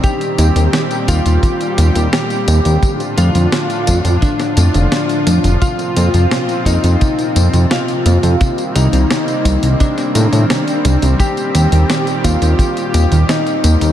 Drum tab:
HH |xxxxxxxxxxxxxxxx|xxxxxxxxxxxxxxxx|xxxxxxxxxxxxxxxx|xxxxxxxxxxxxxxxx|
TB |xxxxxxxxxxxxxxxx|xxxxxxxxxxxxxxxx|xxxxxxxxxxxxxxxx|xxxxxxxxxxxxxxxx|
SD |----o-------o---|----o----o--o---|----o-------o---|----o----o--o---|
BD |o-----o-o-------|o-----o-o-------|o-----o-o-------|o-----o-o-------|

HH |xxxxxxxxxxxxxxxx|
TB |xxxxxxxxxxxxxxxx|
SD |----o-------o---|
BD |o-----o-o-------|